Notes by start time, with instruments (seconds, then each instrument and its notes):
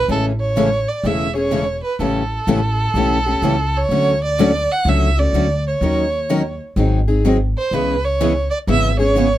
0.08 upright bass A1, steel-string acoustic guitar C#3 E3 G#3 A3 C#4 E4 G#4 A4, violin A4
0.41 violin C#5
0.56 steel-string acoustic guitar C#3 E3 G#3 A3 C#4 E4 G#4 A4
0.88 violin D5
1.04 upright bass E1, steel-string acoustic guitar C#3 E3 G#3 A3 C#4 E4 G#4 A4, violin E5
1.35 steel-string acoustic guitar A3 C#4 G#4, violin C#5
1.51 steel-string acoustic guitar C#3 E3 G#3 A3 C#4 E4 G#4 A4
1.84 violin B4
1.99 upright bass A1, steel-string acoustic guitar C#3 E3 G3 A3 C#4 E4 G4 A4, violin A4
2.47 upright bass A1, steel-string acoustic guitar C#3 E3 G3 A3 C#4 E4 G4 A4
2.94 upright bass B1, steel-string acoustic guitar C#3 E3 G3 A3 C#4 E4 G4 A4
3.26 steel-string acoustic guitar A3 C#4 G4
3.42 upright bass C#2, steel-string acoustic guitar C#3 E3 G3 A3 C#4 E4 G4 A4
3.77 violin C#5
3.89 upright bass D2, steel-string acoustic guitar D3 F#3 A3 C#4 F#4 A4
4.25 violin D5
4.39 steel-string acoustic guitar D3 F#3 A3 C#4 F#4 A4
4.71 violin F#5
4.85 upright bass C#2, steel-string acoustic guitar D3 F#3 A3 C#4 F#4 A4, violin E5
5.18 steel-string acoustic guitar A3 C#4 F#4, violin D5
5.33 upright bass D2, steel-string acoustic guitar D3 F#3 A3 C#4 F#4 A4
5.67 violin C#5
5.81 upright bass D#2, steel-string acoustic guitar D#3 F#3 C#4 D#4 A#4
6.30 steel-string acoustic guitar D#3 F#3 C#4 D#4 A#4
6.76 upright bass G#1, steel-string acoustic guitar D#3 F#3 C4 D#4 G#4
7.08 steel-string acoustic guitar C4 D#4 G#4
7.25 steel-string acoustic guitar D#3 F#3 C4 D#4 G#4
7.58 violin C5
7.71 upright bass C#2, steel-string acoustic guitar C#3 E3 G#3 B3 C#4 E4 G#4, violin B4
8.04 violin C#5
8.20 steel-string acoustic guitar C#3 E3 G#3 B3 C#4 E4 G#4
8.50 violin D5
8.67 upright bass G#1, steel-string acoustic guitar C#3 E3 G#3 B3 C#4 E4 G#4, violin E5
8.99 steel-string acoustic guitar B3 C#4 G#4, violin C#5
9.15 steel-string acoustic guitar C#3 E3 G#3 B3 C#4 E4 G#4